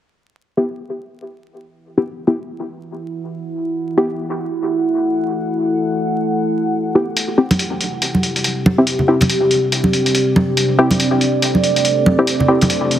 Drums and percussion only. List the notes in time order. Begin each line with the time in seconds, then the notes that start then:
7.17 closed hi-hat
7.51 closed hi-hat, high conga
7.59 closed hi-hat
7.81 closed hi-hat
8.02 closed hi-hat
8.15 high conga
8.23 closed hi-hat
8.36 closed hi-hat
8.44 closed hi-hat
8.66 high conga
8.87 closed hi-hat
8.99 low conga
9.21 closed hi-hat, high conga, low conga
9.29 closed hi-hat
9.51 closed hi-hat
9.72 closed hi-hat
9.84 high conga
9.93 closed hi-hat
10.06 closed hi-hat
10.15 closed hi-hat
10.36 high conga
10.57 closed hi-hat
10.91 closed hi-hat, high conga
11.00 closed hi-hat
11.21 closed hi-hat
11.42 closed hi-hat
11.55 high conga
11.64 closed hi-hat
11.76 closed hi-hat
11.85 closed hi-hat
12.06 high conga
12.27 closed hi-hat
12.40 low conga
12.61 closed hi-hat, high conga, low conga
12.70 closed hi-hat
12.91 closed hi-hat